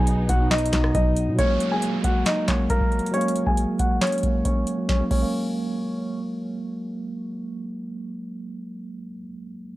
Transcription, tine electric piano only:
0, 0, Header, 1, 2, 480
1, 0, Start_track
1, 0, Key_signature, 6, "major"
1, 0, Tempo, 437956
1, 1519, Time_signature, 4, 2, 24, 8
1, 10705, End_track
2, 0, Start_track
2, 0, Title_t, "Tine electric piano"
2, 0, Program_c, 0, 4
2, 0, Control_c, 0, 64, 127
2, 0, Note_on_c, 0, 47, 102
2, 0, Note_on_c, 0, 54, 92
2, 0, Note_on_c, 0, 59, 114
2, 0, Note_on_c, 0, 63, 96
2, 363, Note_off_c, 0, 47, 0
2, 378, Note_off_c, 0, 54, 0
2, 394, Note_off_c, 0, 59, 0
2, 397, Note_on_c, 0, 47, 77
2, 429, Note_on_c, 0, 54, 73
2, 460, Note_off_c, 0, 63, 0
2, 460, Note_on_c, 0, 63, 85
2, 751, Note_off_c, 0, 47, 0
2, 767, Note_off_c, 0, 54, 0
2, 771, Note_on_c, 0, 47, 69
2, 783, Note_off_c, 0, 63, 0
2, 802, Note_on_c, 0, 54, 65
2, 834, Note_on_c, 0, 63, 83
2, 1452, Note_off_c, 0, 47, 0
2, 1467, Note_off_c, 0, 54, 0
2, 1483, Note_off_c, 0, 63, 0
2, 1483, Note_on_c, 0, 54, 95
2, 1514, Note_on_c, 0, 56, 89
2, 1534, Control_c, 0, 64, 0
2, 1545, Note_on_c, 0, 58, 111
2, 1751, Control_c, 0, 64, 127
2, 1834, Note_off_c, 0, 54, 0
2, 1850, Note_off_c, 0, 56, 0
2, 1854, Note_on_c, 0, 54, 72
2, 1865, Note_off_c, 0, 58, 0
2, 1885, Note_on_c, 0, 56, 62
2, 1916, Note_on_c, 0, 58, 75
2, 2644, Note_off_c, 0, 54, 0
2, 2660, Note_off_c, 0, 56, 0
2, 2676, Note_off_c, 0, 58, 0
2, 2689, Note_on_c, 0, 54, 80
2, 2721, Note_on_c, 0, 56, 65
2, 2752, Note_on_c, 0, 58, 82
2, 3371, Note_off_c, 0, 54, 0
2, 3387, Note_off_c, 0, 56, 0
2, 3403, Note_off_c, 0, 58, 0
2, 3413, Note_on_c, 0, 54, 99
2, 3444, Note_on_c, 0, 56, 93
2, 3475, Note_on_c, 0, 58, 118
2, 3751, Note_off_c, 0, 54, 0
2, 3764, Note_on_c, 0, 54, 72
2, 3775, Note_off_c, 0, 56, 0
2, 3791, Note_off_c, 0, 58, 0
2, 3796, Note_on_c, 0, 56, 65
2, 3827, Note_on_c, 0, 58, 74
2, 4560, Note_off_c, 0, 54, 0
2, 4576, Note_off_c, 0, 56, 0
2, 4591, Note_off_c, 0, 58, 0
2, 4610, Note_on_c, 0, 54, 74
2, 4642, Note_on_c, 0, 56, 65
2, 4673, Note_on_c, 0, 58, 81
2, 5219, Note_off_c, 0, 54, 0
2, 5233, Note_on_c, 0, 54, 83
2, 5307, Note_off_c, 0, 56, 0
2, 5323, Note_off_c, 0, 58, 0
2, 5358, Note_on_c, 0, 56, 78
2, 5374, Control_c, 0, 64, 0
2, 5425, Note_off_c, 0, 54, 0
2, 5473, Note_on_c, 0, 54, 83
2, 5484, Note_on_c, 0, 58, 92
2, 5492, Note_off_c, 0, 56, 0
2, 5560, Note_off_c, 0, 58, 0
2, 5562, Control_c, 0, 64, 127
2, 5599, Note_on_c, 0, 56, 75
2, 5724, Note_on_c, 0, 58, 93
2, 9771, Note_off_c, 0, 54, 0
2, 9897, Note_off_c, 0, 56, 0
2, 10023, Note_off_c, 0, 58, 0
2, 10705, End_track
0, 0, End_of_file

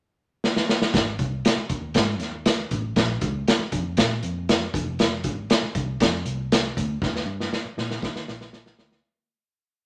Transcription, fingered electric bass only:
0, 0, Header, 1, 3, 480
1, 0, Start_track
1, 0, Key_signature, -4, "major"
1, 0, Tempo, 506329
1, 887, Time_signature, 4, 2, 24, 8
1, 9345, End_track
2, 0, Start_track
2, 0, Title_t, "Fingered electric bass"
2, 0, Program_c, 0, 33
2, 891, Note_on_c, 0, 32, 89
2, 1099, Note_off_c, 0, 32, 0
2, 1128, Note_on_c, 0, 36, 89
2, 1337, Note_off_c, 0, 36, 0
2, 1610, Note_on_c, 0, 39, 80
2, 1819, Note_off_c, 0, 39, 0
2, 1848, Note_on_c, 0, 44, 98
2, 2090, Note_off_c, 0, 44, 0
2, 2090, Note_on_c, 0, 39, 82
2, 2509, Note_off_c, 0, 39, 0
2, 2570, Note_on_c, 0, 33, 90
2, 2779, Note_off_c, 0, 33, 0
2, 2808, Note_on_c, 0, 34, 107
2, 3018, Note_off_c, 0, 34, 0
2, 3048, Note_on_c, 0, 37, 94
2, 3258, Note_off_c, 0, 37, 0
2, 3528, Note_on_c, 0, 41, 83
2, 3738, Note_off_c, 0, 41, 0
2, 3769, Note_on_c, 0, 46, 82
2, 3979, Note_off_c, 0, 46, 0
2, 4007, Note_on_c, 0, 41, 89
2, 4428, Note_off_c, 0, 41, 0
2, 4495, Note_on_c, 0, 29, 94
2, 4966, Note_off_c, 0, 29, 0
2, 4966, Note_on_c, 0, 32, 82
2, 5178, Note_off_c, 0, 32, 0
2, 5448, Note_on_c, 0, 36, 78
2, 5659, Note_off_c, 0, 36, 0
2, 5690, Note_on_c, 0, 41, 103
2, 5900, Note_off_c, 0, 41, 0
2, 5928, Note_on_c, 0, 36, 86
2, 6349, Note_off_c, 0, 36, 0
2, 6417, Note_on_c, 0, 38, 90
2, 6624, Note_off_c, 0, 38, 0
2, 6652, Note_on_c, 0, 39, 90
2, 6862, Note_off_c, 0, 39, 0
2, 6881, Note_on_c, 0, 43, 84
2, 7095, Note_off_c, 0, 43, 0
2, 7370, Note_on_c, 0, 46, 77
2, 7580, Note_off_c, 0, 46, 0
2, 7607, Note_on_c, 0, 51, 91
2, 7819, Note_off_c, 0, 51, 0
2, 7848, Note_on_c, 0, 34, 82
2, 8269, Note_off_c, 0, 34, 0
2, 8332, Note_on_c, 0, 38, 86
2, 8541, Note_off_c, 0, 38, 0
2, 9345, End_track
3, 0, Start_track
3, 0, Title_t, "Muted fingered electric bass strokes"
3, 1490, Note_on_c, 9, 29, 41
3, 1584, Note_off_c, 9, 29, 0
3, 3403, Note_on_c, 9, 29, 43
3, 3498, Note_off_c, 9, 29, 0
3, 5331, Note_on_c, 9, 29, 41
3, 5426, Note_off_c, 9, 29, 0
3, 7253, Note_on_c, 9, 29, 42
3, 7348, Note_off_c, 9, 29, 0
3, 9345, End_track
0, 0, End_of_file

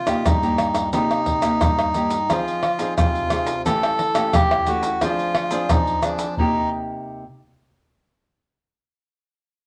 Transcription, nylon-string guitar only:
0, 0, Header, 1, 2, 480
1, 0, Start_track
1, 0, Key_signature, -3, "minor"
1, 0, Tempo, 680272
1, 660, Time_signature, 4, 2, 24, 8
1, 6822, End_track
2, 0, Start_track
2, 0, Title_t, "Nylon-string guitar"
2, 0, Program_c, 0, 24
2, 0, Note_on_c, 0, 48, 65
2, 46, Note_on_c, 0, 58, 57
2, 48, Note_on_c, 0, 63, 69
2, 55, Note_on_c, 0, 67, 70
2, 156, Note_off_c, 0, 48, 0
2, 178, Note_on_c, 0, 43, 68
2, 255, Note_off_c, 0, 58, 0
2, 257, Note_off_c, 0, 63, 0
2, 258, Note_off_c, 0, 67, 0
2, 301, Note_on_c, 0, 58, 59
2, 304, Note_on_c, 0, 63, 59
2, 306, Note_on_c, 0, 67, 64
2, 636, Note_off_c, 0, 43, 0
2, 642, Note_off_c, 0, 58, 0
2, 643, Note_off_c, 0, 63, 0
2, 645, Note_off_c, 0, 67, 0
2, 658, Note_on_c, 0, 48, 70
2, 661, Note_on_c, 0, 58, 56
2, 662, Note_on_c, 0, 63, 54
2, 666, Note_on_c, 0, 67, 64
2, 982, Note_off_c, 0, 58, 0
2, 984, Note_off_c, 0, 63, 0
2, 985, Note_off_c, 0, 67, 0
2, 1008, Note_on_c, 0, 58, 62
2, 1012, Note_on_c, 0, 63, 61
2, 1013, Note_on_c, 0, 67, 64
2, 1116, Note_off_c, 0, 48, 0
2, 1141, Note_on_c, 0, 43, 65
2, 1337, Note_off_c, 0, 58, 0
2, 1338, Note_off_c, 0, 63, 0
2, 1339, Note_off_c, 0, 67, 0
2, 1378, Note_on_c, 0, 58, 54
2, 1381, Note_on_c, 0, 63, 48
2, 1386, Note_on_c, 0, 67, 58
2, 1521, Note_off_c, 0, 58, 0
2, 1523, Note_off_c, 0, 63, 0
2, 1524, Note_off_c, 0, 67, 0
2, 1598, Note_off_c, 0, 43, 0
2, 1625, Note_on_c, 0, 53, 68
2, 1627, Note_on_c, 0, 60, 60
2, 1627, Note_on_c, 0, 63, 61
2, 1634, Note_on_c, 0, 68, 63
2, 1849, Note_off_c, 0, 60, 0
2, 1851, Note_off_c, 0, 63, 0
2, 1852, Note_off_c, 0, 68, 0
2, 1973, Note_on_c, 0, 60, 62
2, 1975, Note_on_c, 0, 63, 62
2, 1980, Note_on_c, 0, 68, 68
2, 2080, Note_off_c, 0, 53, 0
2, 2108, Note_on_c, 0, 48, 77
2, 2299, Note_off_c, 0, 60, 0
2, 2301, Note_off_c, 0, 63, 0
2, 2302, Note_off_c, 0, 68, 0
2, 2339, Note_on_c, 0, 60, 54
2, 2343, Note_on_c, 0, 63, 57
2, 2346, Note_on_c, 0, 68, 62
2, 2482, Note_off_c, 0, 60, 0
2, 2484, Note_off_c, 0, 63, 0
2, 2486, Note_off_c, 0, 68, 0
2, 2562, Note_off_c, 0, 48, 0
2, 2588, Note_on_c, 0, 52, 75
2, 2589, Note_on_c, 0, 57, 62
2, 2593, Note_on_c, 0, 67, 61
2, 2594, Note_on_c, 0, 61, 63
2, 2811, Note_off_c, 0, 57, 0
2, 2812, Note_off_c, 0, 61, 0
2, 2814, Note_off_c, 0, 67, 0
2, 2934, Note_on_c, 0, 57, 67
2, 2939, Note_on_c, 0, 61, 66
2, 2940, Note_on_c, 0, 67, 68
2, 3042, Note_off_c, 0, 52, 0
2, 3064, Note_on_c, 0, 52, 70
2, 3261, Note_off_c, 0, 57, 0
2, 3262, Note_off_c, 0, 61, 0
2, 3263, Note_off_c, 0, 67, 0
2, 3297, Note_on_c, 0, 57, 58
2, 3300, Note_on_c, 0, 61, 59
2, 3303, Note_on_c, 0, 67, 66
2, 3502, Note_off_c, 0, 57, 0
2, 3503, Note_off_c, 0, 61, 0
2, 3505, Note_off_c, 0, 67, 0
2, 3520, Note_off_c, 0, 52, 0
2, 3544, Note_on_c, 0, 53, 71
2, 3546, Note_on_c, 0, 60, 60
2, 3548, Note_on_c, 0, 62, 61
2, 3552, Note_on_c, 0, 68, 68
2, 3866, Note_off_c, 0, 60, 0
2, 3868, Note_off_c, 0, 62, 0
2, 3868, Note_off_c, 0, 68, 0
2, 3891, Note_on_c, 0, 60, 69
2, 3894, Note_on_c, 0, 62, 70
2, 3898, Note_on_c, 0, 68, 81
2, 4000, Note_off_c, 0, 53, 0
2, 4027, Note_on_c, 0, 53, 75
2, 4219, Note_off_c, 0, 60, 0
2, 4220, Note_off_c, 0, 62, 0
2, 4222, Note_off_c, 0, 68, 0
2, 4262, Note_on_c, 0, 60, 60
2, 4264, Note_on_c, 0, 62, 58
2, 4270, Note_on_c, 0, 68, 65
2, 4464, Note_off_c, 0, 60, 0
2, 4466, Note_off_c, 0, 62, 0
2, 4467, Note_off_c, 0, 68, 0
2, 4481, Note_off_c, 0, 53, 0
2, 4503, Note_on_c, 0, 48, 65
2, 4507, Note_on_c, 0, 58, 67
2, 4512, Note_on_c, 0, 63, 68
2, 4517, Note_on_c, 0, 67, 63
2, 5103, Note_off_c, 0, 48, 0
2, 5103, Note_off_c, 0, 58, 0
2, 5103, Note_off_c, 0, 63, 0
2, 5103, Note_off_c, 0, 67, 0
2, 6822, End_track
0, 0, End_of_file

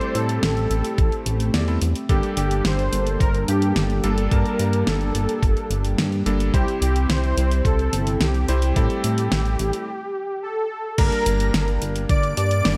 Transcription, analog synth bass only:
0, 0, Header, 1, 2, 480
1, 0, Start_track
1, 0, Tempo, 555556
1, 1809, Time_signature, 4, 2, 24, 8
1, 11034, End_track
2, 0, Start_track
2, 0, Title_t, "Analog synth bass"
2, 0, Program_c, 0, 38
2, 127, Note_on_c, 0, 45, 79
2, 341, Note_off_c, 0, 45, 0
2, 366, Note_on_c, 0, 33, 96
2, 580, Note_off_c, 0, 33, 0
2, 607, Note_on_c, 0, 33, 90
2, 714, Note_off_c, 0, 33, 0
2, 849, Note_on_c, 0, 33, 73
2, 955, Note_off_c, 0, 33, 0
2, 1088, Note_on_c, 0, 33, 98
2, 1301, Note_off_c, 0, 33, 0
2, 1328, Note_on_c, 0, 40, 82
2, 1541, Note_off_c, 0, 40, 0
2, 1568, Note_on_c, 0, 40, 90
2, 1675, Note_off_c, 0, 40, 0
2, 1807, Note_on_c, 0, 31, 97
2, 1915, Note_off_c, 0, 31, 0
2, 2048, Note_on_c, 0, 31, 98
2, 2261, Note_off_c, 0, 31, 0
2, 2289, Note_on_c, 0, 31, 101
2, 2502, Note_off_c, 0, 31, 0
2, 2529, Note_on_c, 0, 31, 97
2, 2742, Note_off_c, 0, 31, 0
2, 2767, Note_on_c, 0, 31, 82
2, 2981, Note_off_c, 0, 31, 0
2, 3009, Note_on_c, 0, 43, 92
2, 3222, Note_off_c, 0, 43, 0
2, 3248, Note_on_c, 0, 31, 105
2, 3461, Note_off_c, 0, 31, 0
2, 3487, Note_on_c, 0, 31, 91
2, 3701, Note_off_c, 0, 31, 0
2, 3727, Note_on_c, 0, 43, 86
2, 3835, Note_off_c, 0, 43, 0
2, 3970, Note_on_c, 0, 43, 82
2, 4182, Note_off_c, 0, 43, 0
2, 4209, Note_on_c, 0, 31, 98
2, 4422, Note_off_c, 0, 31, 0
2, 4447, Note_on_c, 0, 31, 93
2, 4555, Note_off_c, 0, 31, 0
2, 4689, Note_on_c, 0, 31, 76
2, 4796, Note_off_c, 0, 31, 0
2, 4928, Note_on_c, 0, 31, 97
2, 5142, Note_off_c, 0, 31, 0
2, 5170, Note_on_c, 0, 43, 93
2, 5382, Note_off_c, 0, 43, 0
2, 5409, Note_on_c, 0, 31, 100
2, 5622, Note_off_c, 0, 31, 0
2, 5649, Note_on_c, 0, 36, 98
2, 5756, Note_off_c, 0, 36, 0
2, 5889, Note_on_c, 0, 36, 100
2, 6102, Note_off_c, 0, 36, 0
2, 6128, Note_on_c, 0, 36, 108
2, 6341, Note_off_c, 0, 36, 0
2, 6370, Note_on_c, 0, 36, 101
2, 6583, Note_off_c, 0, 36, 0
2, 6609, Note_on_c, 0, 36, 82
2, 6822, Note_off_c, 0, 36, 0
2, 6850, Note_on_c, 0, 31, 89
2, 7062, Note_off_c, 0, 31, 0
2, 7090, Note_on_c, 0, 36, 101
2, 7302, Note_off_c, 0, 36, 0
2, 7330, Note_on_c, 0, 36, 92
2, 7543, Note_off_c, 0, 36, 0
2, 7569, Note_on_c, 0, 45, 84
2, 7676, Note_off_c, 0, 45, 0
2, 7812, Note_on_c, 0, 45, 82
2, 8023, Note_off_c, 0, 45, 0
2, 8050, Note_on_c, 0, 33, 100
2, 8262, Note_off_c, 0, 33, 0
2, 8291, Note_on_c, 0, 33, 94
2, 8397, Note_off_c, 0, 33, 0
2, 9489, Note_on_c, 0, 31, 96
2, 9595, Note_off_c, 0, 31, 0
2, 9731, Note_on_c, 0, 31, 103
2, 9943, Note_off_c, 0, 31, 0
2, 9970, Note_on_c, 0, 31, 104
2, 10182, Note_off_c, 0, 31, 0
2, 10212, Note_on_c, 0, 31, 100
2, 10423, Note_off_c, 0, 31, 0
2, 10449, Note_on_c, 0, 31, 88
2, 10662, Note_off_c, 0, 31, 0
2, 10692, Note_on_c, 0, 43, 94
2, 10903, Note_off_c, 0, 43, 0
2, 10933, Note_on_c, 0, 31, 103
2, 11034, Note_off_c, 0, 31, 0
2, 11034, End_track
0, 0, End_of_file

